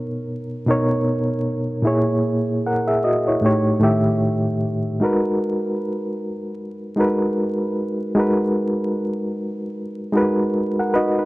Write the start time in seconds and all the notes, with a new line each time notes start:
Already playing: B2 B3 D#4 A#4 C#5
0.66 B2 B3 D#4 A#4
0.71 C#5
1.82 A#2 A#3 E4 G#4
1.87 C#5
2.66 A#4 F#5
2.88 G#4 E5
3.04 F#4 D#5
3.28 E4 C#5
3.41 A2 A3 D#4 G4
3.46 C#5
3.79 A2 D#3 A3 G4
3.84 E5
5.00 G#3 D#4 F#4 A#4
5.05 B4
6.96 G#3 D#4 F#4 A#4
7.01 B4
8.15 G#3 D#4 F#4 A#4
8.20 B4
10.12 G#3 D#4 F#4 A#4
10.17 B4
10.79 A#4 F#5
10.94 D#4 F#4 B4 D#5
11.19 D#4 B4